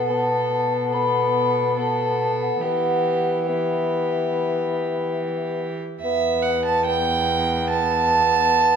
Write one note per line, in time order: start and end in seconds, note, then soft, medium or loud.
0.00 2.58 B2 medium
0.00 0.11 F#5 medium
0.07 0.91 B3 medium
0.07 0.89 A4 medium
0.07 0.95 A5 medium
0.90 1.74 A4 medium
0.90 1.76 B5 medium
0.95 1.77 B3 medium
1.77 2.61 B3 medium
1.77 2.63 A4 medium
1.77 2.39 A5 medium
2.41 2.60 F#5 medium
2.60 5.79 E3 medium
2.60 3.46 G4 medium
2.60 3.49 F#5 medium
2.65 3.47 B3 medium
3.47 5.67 B3 medium
3.47 5.78 G4 medium
3.47 5.60 E5 medium
6.00 8.76 E2 medium
6.00 6.84 B3 medium
6.00 6.44 E5 medium
6.00 6.42 E5 medium
6.42 6.64 F#5 medium
6.42 6.50 F#5 medium
6.65 6.85 A5 medium
6.65 6.86 A5 medium
6.85 8.76 B3 medium
6.85 7.69 G5 medium
6.85 7.72 G5 medium
7.70 8.76 A5 loud
7.70 8.76 A5 medium